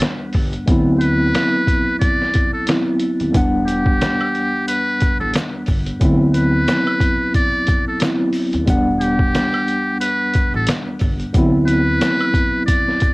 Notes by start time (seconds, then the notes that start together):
Already playing: E2 G3 B3 D4 F#5
0.00 snare, closed hi-hat
0.33 G1, kick, open hi-hat
0.53 closed hi-hat
0.66 D2 F#3 B3, kick, closed hi-hat
0.70 C4 E4
1.00 B4, closed hi-hat
1.35 snare, closed hi-hat
1.67 kick, closed hi-hat
1.99 D5, kick, closed hi-hat
2.22 snare
2.34 kick, closed hi-hat
2.53 A4
2.67 D2 F#3 B3 C4 E4, snare, closed hi-hat
3.00 closed hi-hat
3.20 D#2, closed hi-hat
3.32 E1 E2 G3 B3 D4, kick, closed hi-hat, shaker
3.37 F#5
3.66 G4, closed hi-hat, shaker
3.86 kick
4.01 snare, closed hi-hat, shaker
4.21 high woodblock
4.34 closed hi-hat, shaker
4.68 B4, closed hi-hat, shaker
5.00 kick, closed hi-hat, shaker
5.20 A1 A4
5.34 snare, closed hi-hat, shaker
5.66 G1, kick, open hi-hat, shaker
5.86 closed hi-hat
6.00 D2 F#3 B3 C4, kick, closed hi-hat, shaker
6.05 E4
6.34 B4, closed hi-hat, shaker
6.68 snare, closed hi-hat, shaker
6.87 high woodblock
7.00 kick, closed hi-hat, shaker
7.34 D5, kick, closed hi-hat, shaker
7.67 kick, closed hi-hat, shaker
7.88 A4
8.00 D2 F#3 B3 C4 E4, snare, closed hi-hat, shaker
8.33 open hi-hat, shaker
8.53 D#2, closed hi-hat
8.65 E1 E2 G3 B3, kick, closed hi-hat, shaker
8.69 D4 F#5
9.00 G4, closed hi-hat, shaker
9.19 kick
9.34 snare, closed hi-hat, shaker
9.54 high woodblock
9.67 closed hi-hat, shaker
10.00 B4, closed hi-hat, shaker
10.34 kick, closed hi-hat, shaker
10.54 A1 A4
10.67 snare, closed hi-hat, shaker
10.99 G1, kick, open hi-hat, shaker
11.20 closed hi-hat
11.33 D2 F#3 B3, kick, closed hi-hat, shaker
11.37 C4 E4
11.67 B4, closed hi-hat, shaker
12.01 snare, closed hi-hat, shaker
12.21 high woodblock
12.34 kick, closed hi-hat, shaker
12.66 D5, kick, closed hi-hat, shaker
12.88 snare
13.00 kick, closed hi-hat, shaker